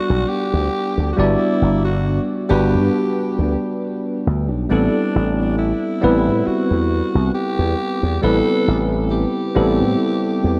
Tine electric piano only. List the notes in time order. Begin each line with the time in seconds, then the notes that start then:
Already playing: G3 B3 D4 D5 F#5
1.16 G3 B3 D4 F#4 D5
2.49 G3 B3 D4 F#4 B4
4.69 G3 B3 C4 E4 A4
6.01 G3 B3 C4 E4 B4
8.21 G3 B3 C4 E4 B4
9.55 G3 B3 C4 E4 A4